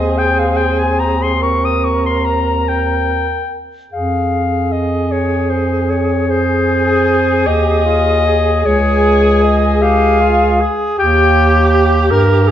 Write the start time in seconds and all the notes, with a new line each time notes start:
Already playing: D#2 C4 G#4 D#5
0.18 G5
0.39 F5
0.57 G5
0.79 G#5
1.00 A#5
1.23 C6
1.41 A#4 C#6
1.65 D#6
1.85 C#6
2.06 C6
2.25 A#5
2.68 G5
3.91 F2 G#4 F5
4.72 D#5
5.12 C#5
5.50 C5
5.90 C#5
6.27 G#4 C5
7.46 D#2 G4 D#5
7.86 F4
8.25 G#4
8.65 C#2 G#4 C#5
9.43 D#5
9.81 G4 G#4 F5
10.21 F4
10.61 G#4
10.98 D#2 G4 G5
12.11 G2 A#4
12.48 G#4